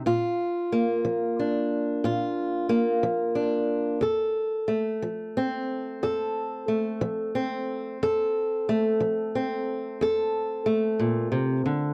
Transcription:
\new Staff \with { instrumentName = "Steel-string acoustic guitar" } { \time 12/8 \key f \mixolydian \tempo 4. = 60 << { f'4 bes4 d'4 f'4 bes4 d'4 | a'4 a4 c'4 a'4 a4 c'4 | a'4 a4 c'4 a'4 a2 | } \\ { bes,4 r8 f4 r8 bes,4 r8 f4 r8 | f,4 r8 f4 r8 f,4 r8 f4 r8 | f,4 r8 f4 r8 f,4 r8 bes,8 c8 d8 | } >> }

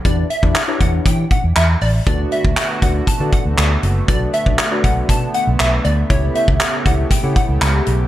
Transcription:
<<
  \new Staff \with { instrumentName = "Digital synth lead" } { \time 4/4 \key d \major \tempo 4 = 119 d''8 e''8. r16 fis''16 r16 g''8 fis''16 r16 e''16 r16 d''16 r16 | d''8 e''8. r16 fis''16 r16 a''8 fis''16 r4 r16 | d''8 e''8. r16 fis''16 r16 a''8 fis''16 r16 e''16 r16 d''16 r16 | cis''8 e''8. r16 fis''16 r16 g''8 fis''16 r4 r16 | }
  \new Staff \with { instrumentName = "Synth keys" } { \time 4/4 \key d \major <d' e' g' b' d''>8 r16 <d' e' g' b' d''>16 r16 <d' e' g' b' cis''>4~ <d' e' g' b' cis''>16 r4. | <d' fis' a' b' d''>8. r8. <d' fis' a' b' d''>8 r16 <d' fis' a' b' d''>4 r8. | <d' fis' a' b' d''>8 r16 <d' fis' a' b' d''>16 r16 <d' fis' a' b' d''>4~ <d' fis' a' b' d''>16 r4. | <e' g' a' cis'' e''>8. r8. <e' g' a' cis'' e''>8 r16 <e' g' a' cis'' fis''>4 r8. | }
  \new Staff \with { instrumentName = "Analog synth pad" } { \time 4/4 \key d \major << { r1 | <d a fis'>1 | d1 | <cis a g'>1 | } \\ { r1 | b1~ | b1~ | b1 | } >> }
  \new Staff \with { instrumentName = "Fingered electric bass" } { \clef bass \time 4/4 \key d \major e,8 r16 e,16 r8 e,8 e8 r16 e,16 e,8 a,,8 | d,8 r16 d,16 r8 d,8 r16 d16 r16 d,16 d,8 fis,,8 | b,,8 r16 b,,16 r8 b,,8 b,8 r16 b,,16 b,,8 d,8 | cis,8 r16 cis,16 r8 cis,8 r16 cis16 r16 cis,16 cis,8 b,,8 | }
  \new DrumStaff \with { instrumentName = "Drums" } \drummode { \time 4/4 <hh bd>8 hh16 bd16 <hc hh>8 <hh bd>8 <hh bd>8 <hh bd>8 <hc hh>8 hho8 | <hh bd>8 hh16 bd16 <hc hh>8 <hh bd>8 <hh bd>8 <hh bd>8 <hc hh>8 hh8 | <hh bd>8 hh16 bd16 <hc hh>8 <hh bd>8 <hh bd>8 hh8 <hc hh>8 hh8 | <hh bd>8 hh16 bd16 <hc hh>8 <hh bd>8 <hh bd>8 <hh bd>8 <hc hh>8 hh8 | }
>>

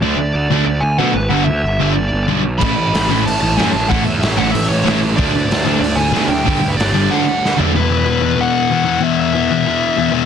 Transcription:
<<
  \new Staff \with { instrumentName = "Lead electric guitar" } { \time 4/4 \key d \lydian \tempo 4 = 187 d''2 d''8 gis''8 fis''8 b'8 | fis''8 e''4. d''4. r8 | b''2 a''8 a''8 gis''8 a''8 | fis''8 e''8 e''8 fis''8 e''8 cis''4 r8 |
d''2 d''8 gis''4 g''8~ | g''8. b'16 d''4 fis''4. r8 | b'2 fis''2 | e''8 e''2. r8 | }
  \new Staff \with { instrumentName = "Overdriven electric guitar" } { \time 4/4 \key d \lydian <d fis a d'>8 r4 <d fis a d'>8 r4 <d fis a d'>8 r8 | <g, d g b d'>8 r4 <g, d g b d'>8 r4 <g, d g b d'>8 r8 | <a, e a cis' e'>8 r4 <a, e a cis' e'>8 r4 <a, e a cis' e'>8 r8 | <a, e a cis' e'>8 r4 <a, e a cis' e'>8 r4 <a, e a cis' e'>8 r8 |
<d fis a d'>8 r4 <d fis a d'>8 r4 <d fis a d'>8 r8 | <g, d g b d'>8 r4 <g, d g b d'>8 <d fis a d'>8 r4 <d fis a d'>8 | r1 | r1 | }
  \new Staff \with { instrumentName = "Distorted electric guitar" } { \clef bass \time 4/4 \key d \lydian r1 | r1 | <a, e a>1 | <a, e a>1 |
<d a d'>1 | <g, d g>2 <d a d'>2 | r1 | r1 | }
  \new Staff \with { instrumentName = "Distorted electric guitar" } { \clef bass \time 4/4 \key d \lydian <d a d'>8 r4 <d a d'>8 r4 <d a d'>8 r8 | <g, d g>8 r4 <g, d g>8 r4 <g, d g>8 r8 | <a, e a>8 r4 <a, e a>8 r4 <a, e a>8 r8 | <a, e a>8 r4 <a, e a>8 r4 <a, e a>8 r8 |
<d a d'>8 r4 <d a d'>8 r4 <d a d'>8 r8 | <g, d g>8 r4 <g, d g>8 <d a d'>8 r4 <d a d'>8 | <e, b, e>4 <e, b, e>8 <e, b, e>8 <e, b, e>4 <e, b, e>8 <e, b, e>8 | <e, b, e>4 <e, b, e>8 <e, b, e>8 <e, b, e>4 <e, b, e>8 <e, b, e>8 | }
  \new Staff \with { instrumentName = "Picked electric bass" } { \clef bass \time 4/4 \key d \lydian d,8 d,8 d,8 d,8 d,8 d,8 b,8 gis,,8 | g,,8 d,8 g,,8 g,,8 g,,8 g,,8 b,,4 | a,,8 a,,8 a,,8 a,,8 a,,8 a,,8 fis,8 a,,8 | a,,8 e,8 a,,8 a,,8 a,,8 a,,8 a,,4 |
d,8 d,8 d,8 d,8 d,8 d,8 b,8 d,8 | g,,8 d,8 g,,8 g,,8 r2 | r1 | r1 | }
  \new DrumStaff \with { instrumentName = "Drums" } \drummode { \time 4/4 r4 r4 r4 r4 | r4 r4 r4 r4 | <cymc bd>4 <hho sn>4 hho4 <hho sn>4 | <hho bd>4 <hho sn>4 hho4 <hho sn>4 |
<hho bd>4 <hho sn>4 hho4 <hho sn>4 | <hho bd>4 <hho sn>4 r4 sn8 tomfh8 | r4 r4 r4 r4 | r4 r4 r4 r4 | }
>>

